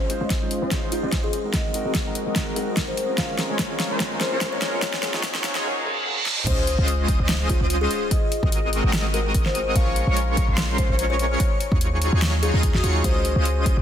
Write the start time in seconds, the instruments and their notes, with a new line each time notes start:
Already playing: 808-style bass C#2, riser
0.09 grand piano G#3 C#4 D#4 F4 C5, closed hi-hat
0.21 808-style bass C#2, supersaw synth G#3 C#4 F4 C5 D#5
0.30 kick, snare, closed hi-hat
0.41 grand piano G#3 C#4 D#4 F4 C5
0.51 closed hi-hat
0.62 808-style bass C#2, supersaw synth G#3 C#4 F4 C5 D#5
0.70 grand piano G#3 C#4 D#4 F4 C5, kick, snare, closed hi-hat
0.91 grand piano G#3 C#4 D#4 F4 C5, kalimba F4, closed hi-hat
1.03 808-style bass C#2, supersaw synth G#3 C#4 F4 C5 D#5
1.11 grand piano G#3 C#4 D#4 F4 C5, kick, snare, closed hi-hat
1.24 kalimba G#4
1.33 closed hi-hat
1.43 grand piano G#3 C4 D#4 F#4 A#4
1.54 kalimba D#5, kick, snare, closed hi-hat
1.73 grand piano G#3 C4 D#4 F#4 A#4, closed hi-hat
1.85 808-style bass G#1, supersaw synth G#3 C4 F#4 A#4 D#5
1.95 kick, snare, closed hi-hat
2.05 grand piano G#3 C4 D#4 F#4 A#4
2.15 closed hi-hat
2.27 808-style bass G#1, supersaw synth G#3 C4 F#4 A#4 D#5
2.35 grand piano G#3 C4 D#4 F#4 A#4, kick, snare, closed hi-hat
2.55 grand piano G#3 C4 D#4 F#4 A#4, kalimba A#4, closed hi-hat
2.77 grand piano D#4 F#4 A#4, kick, snare, closed hi-hat
2.88 kalimba C5
2.97 closed hi-hat
3.08 grand piano G#3 C4 C#4 F4 A#4
3.18 808-style bass A#1, supersaw synth G#3 C#4 F4 A#4 C#5, kalimba F5, kick, snare, closed hi-hat
3.38 grand piano G#3 C4 C#4 F4 A#4, snare, closed hi-hat
3.50 808-style bass A#1, supersaw synth G#3 C#4 F4 A#4 C#5
3.59 kick, snare, closed hi-hat
3.69 grand piano G#3 C4 C#4 F4 A#4
3.80 snare, closed hi-hat
3.91 808-style bass A#1, supersaw synth G#3 C#4 F4 A#4 C5
3.99 grand piano G#3 C4 C#4 F4 A#4, kick, snare, closed hi-hat
4.20 grand piano G#3 C4 C#4 F4 A#4, kalimba C5, snare, closed hi-hat
4.32 808-style bass A#1, supersaw synth G#3 C#4 F4 A#4 C#5
4.40 grand piano G#3 C4 C#4 F4 A#4, kick, snare, closed hi-hat
4.53 kalimba C#5
4.62 snare, closed hi-hat
4.72 grand piano F#3 A#3 C#4 F4 G#4
4.82 kalimba C#5, kick, snare, closed hi-hat
4.94 snare
5.02 grand piano F#3 A#3 C#4 F4 G#4, snare, closed hi-hat
5.14 808-style bass D#2, supersaw synth F#3 D#4 F4 G#4 C#5, snare
5.23 kick, snare, closed hi-hat
5.34 grand piano F#3 A#3 C#4 F4 G#4, snare
5.44 snare, closed hi-hat
5.55 808-style bass D#2, supersaw synth F#3 D#4 F4 G#4 C#5, snare
5.64 grand piano F#3 A#3 C#4 F4 G#4, reverse cymbal
5.84 grand piano F#3 A#3 C#4 F4 G#4
6.05 grand piano F#3 A#3 C#4 F4 G#4
6.26 snare
6.36 grand piano G#3 C#4 D#4 F4 C5, mid tom
6.47 808-style bass C#2, supersaw synth G#3 C#4 F4 C5 D#5, kalimba C5, digital synth lead D#6, kick, closed hi-hat, crash, sub drop
6.67 closed hi-hat
6.79 808-style bass C#2, supersaw synth G#3 C#4 F4 C5 D#5, digital synth lead D#6
6.88 closed hi-hat
7.08 kick, closed hi-hat
7.20 808-style bass C#2, supersaw synth G#3 C#4 F4 C5 D#5, digital synth lead D#6
7.29 snare, closed hi-hat
7.50 kalimba F4, kick, closed hi-hat
7.61 808-style bass C#2, supersaw synth G#3 C#4 F4 C5 D#5, digital synth lead D#6
7.70 closed hi-hat
7.81 kalimba G#4
7.91 closed hi-hat
8.11 kalimba D#5, kick, closed hi-hat
8.32 closed hi-hat
8.43 808-style bass G#1, supersaw synth G#3 C4 F#4 A#4 D#5, digital synth lead D#6, kick
8.52 closed hi-hat
8.73 closed hi-hat
8.84 808-style bass G#1, supersaw synth G#3 C4 F#4 A#4 D#5, digital synth lead D#6
8.93 snare, closed hi-hat
9.14 kalimba A#4, closed hi-hat
9.34 kick, closed hi-hat
9.46 kalimba C5, snare
9.55 closed hi-hat
9.76 808-style bass A#1, supersaw synth G#3 C#4 F4 A#4 C#5, kalimba F5, digital synth lead C#6, kick, closed hi-hat
9.96 closed hi-hat
10.07 808-style bass A#1, supersaw synth G#3 C#4 F4 A#4 C#5, digital synth lead C#6
10.17 closed hi-hat
10.37 kick, closed hi-hat
10.48 808-style bass A#1, supersaw synth G#3 C#4 F4 A#4 C5, digital synth lead C6
10.58 snare, closed hi-hat
10.78 kalimba C5, kick, closed hi-hat
10.89 808-style bass A#1, supersaw synth G#3 C#4 F4 A#4 C#5, digital synth lead C#6
10.99 closed hi-hat
11.10 kalimba C#5
11.19 closed hi-hat
11.40 kalimba C#5, kick, closed hi-hat
11.61 closed hi-hat
11.72 808-style bass D#2, supersaw synth F#3 D#4 F4 G#4 C#5, digital synth lead C#6, kick
11.81 closed hi-hat
12.02 closed hi-hat
12.13 808-style bass D#2, supersaw synth F#3 D#4 F4 G#4 C#5, digital synth lead C#6
12.22 snare, closed hi-hat
12.43 kalimba G#4, closed hi-hat
12.54 808-style bass D#2, supersaw synth F#3 D#4 F4 G#4 D#5, digital synth lead D#6
12.63 kick, closed hi-hat
12.74 808-style bass D#2, supersaw synth F#3 D#4 F4 G#4 D#5, kalimba F#4, digital synth lead D#6, snare
12.84 808-style bass D#2, supersaw synth F#3 D#4 F4 G#4 C#5, digital synth lead C#6, closed hi-hat
13.04 808-style bass C#2, supersaw synth G#3 C#4 F4 C5 D#5, kalimba C5, digital synth lead D#6, kick, closed hi-hat
13.25 closed hi-hat
13.36 808-style bass C#2, supersaw synth G#3 C#4 F4 C5 D#5, digital synth lead D#6
13.45 closed hi-hat
13.66 kick, closed hi-hat
13.77 808-style bass C#2, supersaw synth G#3 C#4 F4 C5 D#5, digital synth lead D#6